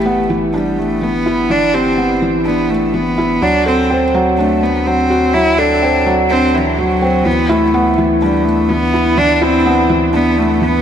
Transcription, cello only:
0, 0, Header, 1, 2, 480
1, 0, Start_track
1, 0, Tempo, 480000
1, 1503, Time_signature, 4, 2, 24, 8
1, 10818, End_track
2, 0, Start_track
2, 0, Title_t, "Cello"
2, 0, Program_c, 0, 42
2, 0, Note_on_c, 0, 57, 85
2, 306, Note_off_c, 0, 57, 0
2, 541, Note_on_c, 0, 55, 76
2, 787, Note_on_c, 0, 57, 77
2, 802, Note_off_c, 0, 55, 0
2, 1030, Note_on_c, 0, 59, 89
2, 1045, Note_off_c, 0, 57, 0
2, 1508, Note_on_c, 0, 62, 102
2, 1523, Note_off_c, 0, 59, 0
2, 1748, Note_on_c, 0, 60, 92
2, 1763, Note_off_c, 0, 62, 0
2, 2226, Note_off_c, 0, 60, 0
2, 2458, Note_on_c, 0, 59, 83
2, 2702, Note_on_c, 0, 57, 74
2, 2717, Note_off_c, 0, 59, 0
2, 2944, Note_on_c, 0, 59, 85
2, 2959, Note_off_c, 0, 57, 0
2, 3425, Note_on_c, 0, 62, 100
2, 3440, Note_off_c, 0, 59, 0
2, 3664, Note_off_c, 0, 62, 0
2, 3671, Note_on_c, 0, 60, 91
2, 4114, Note_off_c, 0, 60, 0
2, 4383, Note_on_c, 0, 57, 80
2, 4631, Note_on_c, 0, 59, 80
2, 4646, Note_off_c, 0, 57, 0
2, 4868, Note_on_c, 0, 60, 90
2, 4883, Note_off_c, 0, 59, 0
2, 5341, Note_on_c, 0, 64, 103
2, 5356, Note_off_c, 0, 60, 0
2, 5585, Note_on_c, 0, 62, 94
2, 5600, Note_off_c, 0, 64, 0
2, 6064, Note_off_c, 0, 62, 0
2, 6304, Note_on_c, 0, 60, 102
2, 6545, Note_on_c, 0, 52, 86
2, 6560, Note_off_c, 0, 60, 0
2, 6784, Note_on_c, 0, 54, 93
2, 6800, Note_off_c, 0, 52, 0
2, 7261, Note_on_c, 0, 59, 94
2, 7276, Note_off_c, 0, 54, 0
2, 7494, Note_on_c, 0, 57, 86
2, 7509, Note_off_c, 0, 59, 0
2, 7979, Note_off_c, 0, 57, 0
2, 8222, Note_on_c, 0, 55, 81
2, 8448, Note_on_c, 0, 57, 81
2, 8462, Note_off_c, 0, 55, 0
2, 8692, Note_on_c, 0, 59, 96
2, 8707, Note_off_c, 0, 57, 0
2, 9181, Note_on_c, 0, 62, 112
2, 9196, Note_off_c, 0, 59, 0
2, 9355, Note_off_c, 0, 62, 0
2, 9355, Note_on_c, 0, 62, 68
2, 9425, Note_on_c, 0, 60, 99
2, 9440, Note_off_c, 0, 62, 0
2, 9904, Note_off_c, 0, 60, 0
2, 10143, Note_on_c, 0, 59, 96
2, 10385, Note_on_c, 0, 57, 84
2, 10400, Note_off_c, 0, 59, 0
2, 10631, Note_on_c, 0, 59, 100
2, 10646, Note_off_c, 0, 57, 0
2, 10818, Note_off_c, 0, 59, 0
2, 10818, End_track
0, 0, End_of_file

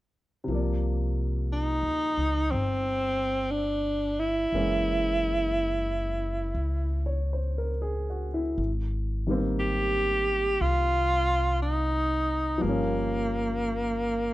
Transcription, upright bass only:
0, 0, Header, 1, 2, 480
1, 0, Start_track
1, 0, Tempo, 1011804
1, 232, Time_signature, 4, 2, 24, 8
1, 6801, End_track
2, 0, Start_track
2, 0, Title_t, "Upright bass"
2, 0, Program_c, 0, 32
2, 228, Note_on_c, 0, 36, 59
2, 855, Note_off_c, 0, 36, 0
2, 867, Note_on_c, 0, 38, 45
2, 1020, Note_off_c, 0, 38, 0
2, 1031, Note_on_c, 0, 37, 51
2, 1183, Note_off_c, 0, 37, 0
2, 1195, Note_on_c, 0, 31, 69
2, 2137, Note_off_c, 0, 31, 0
2, 2146, Note_on_c, 0, 30, 65
2, 3092, Note_off_c, 0, 30, 0
2, 3105, Note_on_c, 0, 37, 65
2, 4049, Note_off_c, 0, 37, 0
2, 4069, Note_on_c, 0, 32, 69
2, 5008, Note_off_c, 0, 32, 0
2, 5032, Note_on_c, 0, 36, 73
2, 5969, Note_off_c, 0, 36, 0
2, 5993, Note_on_c, 0, 31, 63
2, 6779, Note_off_c, 0, 31, 0
2, 6801, End_track
0, 0, End_of_file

